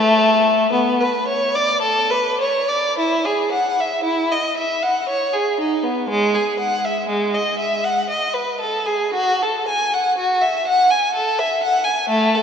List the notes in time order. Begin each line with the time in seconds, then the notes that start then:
Already playing: A3
0.73 B3
1.00 B4
1.27 C#5
1.55 D5
1.81 A4
2.10 B4
2.40 C#5
2.69 D5
2.98 E4
3.25 G#4
3.52 F#5
3.80 E5
4.04 E4
4.31 D#5
4.57 E5
4.82 F#5
5.09 C#5
5.33 G#4
5.60 D#4
5.83 B3
6.09 G#3
6.35 G#4
6.59 F#5
6.85 E5
7.09 G#3
7.34 D#5
7.59 E5
7.84 F#5
8.10 D#5
8.34 B4
8.60 A4
8.86 G#4
9.14 F#4
9.42 A4
9.68 G#5
9.94 F#5
10.18 F#4
10.41 E5
10.67 F#5
10.90 G#5
11.15 A4
11.39 E5
11.63 F#5
11.84 G#5
12.09 A3
12.35 A4